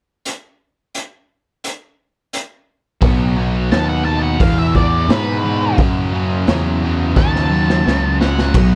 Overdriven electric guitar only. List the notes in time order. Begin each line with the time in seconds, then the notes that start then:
3.02 B2 F#3 B3
3.37 B2 F#3 B3
3.72 B2 F#3 B3
4.06 B2 F#3 B3
4.41 E2 B2 E3
4.75 E2 B2 E3
5.10 E2 B2 E3
5.44 E2 B2 E3
5.78 F#2 C#3 F#3
6.13 F#2 C#3 F#3
6.49 F#2 C#3 F#3
6.83 F#2 C#3 F#3
7.17 F#2 C#3 F#3
7.50 F#2 C#3 F#3
7.85 F#2 C#3 F#3
8.20 F#2 C#3 F#3
8.55 B2 F#3